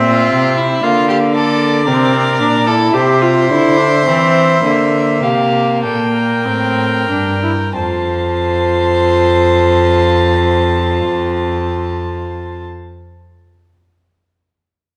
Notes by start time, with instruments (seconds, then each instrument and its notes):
Already playing: cello A#2, viola C4, violin E5
0.07 violin F4
0.33 cello C3
0.57 violin E4
0.83 cello D3, viola A#3, violin F4 F5
1.09 violin G4
1.34 violin A4 D5
1.86 cello C3, viola C4, violin A#4
2.40 cello A#2, viola D4
2.66 viola E4, violin A4
2.94 cello C3, viola G4, violin C5 E5
3.22 viola F4
3.50 cello D3, viola E4
3.77 viola D4
4.06 cello E3, viola C4
4.64 cello D3, viola A#3
5.23 cello C3, violin G4 F5
5.83 cello A#2, violin A4 G5
6.14 violin A#4
6.45 cello A2, viola C4
7.09 cello G2, viola D4
7.42 viola E4
7.76 cello F2, viola F4, violin C5 A5